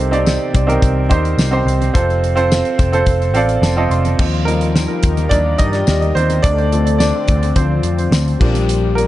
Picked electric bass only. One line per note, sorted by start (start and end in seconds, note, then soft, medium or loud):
0.00 0.37 C2 loud
0.54 0.77 C2 medium
0.83 1.11 C2 medium
1.11 1.33 D#2 medium
1.38 1.61 C2 medium
1.66 1.89 C2 medium
1.95 2.62 F1 loud
2.80 3.02 F1 medium
3.07 3.34 F1 medium
3.34 3.57 A1 medium
3.62 3.85 F1 loud
3.90 4.14 F1 medium
4.19 4.86 D#2 medium
5.04 5.26 D#2 medium
5.31 5.54 D#2 loud
5.59 5.82 G2 medium
5.88 6.11 D#2 loud
6.16 6.39 D#2 loud
6.44 7.11 D2 loud
7.28 7.51 D2 medium
7.56 7.79 D2 medium
7.83 8.07 F2 medium
8.11 8.35 D2 medium
8.41 9.07 A#1 medium